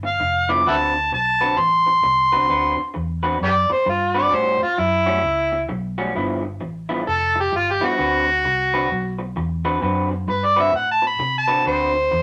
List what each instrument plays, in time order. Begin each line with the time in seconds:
Already playing: fingered electric bass G1
0.03 harmonica F5, muted clean electric guitar stroke
0.20 fingered electric bass F1, muted clean electric guitar stroke
0.49 clean electric guitar G2 F3 B3 E4, harmonica D6
0.65 fingered electric bass D2, clean electric guitar D3 C4 F#4 B4, harmonica E5 F#5 A5
0.96 muted clean electric guitar stroke
1.12 fingered electric bass B1, harmonica A5, muted clean electric guitar stroke
1.41 clean electric guitar D3 C4 F#4 B4
1.58 fingered electric bass A1, harmonica C6, muted clean electric guitar stroke
1.86 muted clean electric guitar stroke
2.03 fingered electric bass C2, muted clean electric guitar stroke
2.32 clean electric guitar D3 C4 F#4 B4
2.49 fingered electric bass D2, clean electric guitar D3 C4 F#4 B4
2.77 muted clean electric guitar stroke, muted fingered electric bass stroke
2.94 fingered electric bass E2, muted clean electric guitar stroke
3.23 clean electric guitar D3 C4 F#4 B4
3.40 fingered electric bass F#2, muted clean electric guitar stroke
3.44 harmonica G4 B4 D5
3.70 harmonica C5, muted clean electric guitar stroke
3.85 fingered electric bass G2, harmonica F4, muted clean electric guitar stroke
4.14 clean electric guitar D3 C4 F#4 B4, harmonica D5
4.31 clean electric guitar A2 G3 C#4 F#4, fingered electric bass A2, harmonica C5
4.60 harmonica F4, muted clean electric guitar stroke, muted fingered electric bass stroke
4.78 fingered electric bass F#2, harmonica E4, muted clean electric guitar stroke
5.06 clean electric guitar A2 G3 C#4 F#4
5.23 fingered electric bass C#2, muted clean electric guitar stroke
5.52 muted clean electric guitar stroke
5.69 fingered electric bass B1, muted clean electric guitar stroke
5.98 clean electric guitar A2 G3 C#4 F#4
6.15 fingered electric bass G1, clean electric guitar G2 F3 B3 E4
6.45 muted clean electric guitar stroke
6.61 fingered electric bass A1, muted clean electric guitar stroke
6.89 clean electric guitar G2 F3 B3 E4
7.06 fingered electric bass F1, harmonica A4, muted clean electric guitar stroke
7.35 muted clean electric guitar stroke
7.40 harmonica G4
7.52 fingered electric bass G1, harmonica F4, muted clean electric guitar stroke
7.71 harmonica G4
7.81 clean electric guitar G2 F3 B3 E4, harmonica F#4, muted fingered electric bass stroke
7.98 fingered electric bass D2, clean electric guitar D3 C4 F#4 B4
8.27 muted clean electric guitar stroke
8.44 fingered electric bass C2, muted clean electric guitar stroke
8.74 clean electric guitar D3 C4 F#4 B4
8.92 fingered electric bass B1
9.19 muted clean electric guitar stroke
9.36 fingered electric bass E2, muted clean electric guitar stroke
9.65 clean electric guitar D3 C4 F#4 B4
9.81 fingered electric bass F#2, clean electric guitar D3 C4 F#4 B4
10.11 muted clean electric guitar stroke
10.27 fingered electric bass G2, harmonica B4, muted clean electric guitar stroke
10.45 harmonica D5
10.56 clean electric guitar D3 C4 F#4 B4
10.60 harmonica E5
10.73 fingered electric bass A2, harmonica F#5, muted clean electric guitar stroke
10.91 harmonica A5
11.02 muted clean electric guitar stroke
11.07 harmonica B5
11.19 fingered electric bass C3, muted clean electric guitar stroke
11.38 harmonica A5
11.48 clean electric guitar D3 C4 F#4 B4
11.65 fingered electric bass D2, clean electric guitar D3 C4 F#4 B4, harmonica C5
11.94 muted clean electric guitar stroke
12.11 fingered electric bass E2, muted clean electric guitar stroke